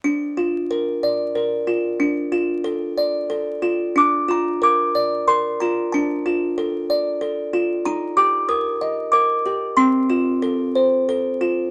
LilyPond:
\new Staff \with { instrumentName = "Music box" } { \time 3/4 \key bes \major \tempo 4 = 92 << { r2. | r2. | d'''8 bes''8 d'''4 c'''8 bes''8 | a''2 r4 |
bes''8 d'''8 ees'''4 d'''4 | c'''2 r4 | } \\ { d'8 f'8 bes'8 d''8 bes'8 f'8 | d'8 f'8 a'8 d''8 a'8 f'8 | d'8 f'8 bes'8 d''8 bes'8 f'8 | d'8 f'8 a'8 d''8 a'8 f'8 |
ees'8 g'8 bes'8 ees''8 bes'8 g'8 | c'8 f'8 a'8 c''8 a'8 f'8 | } >> }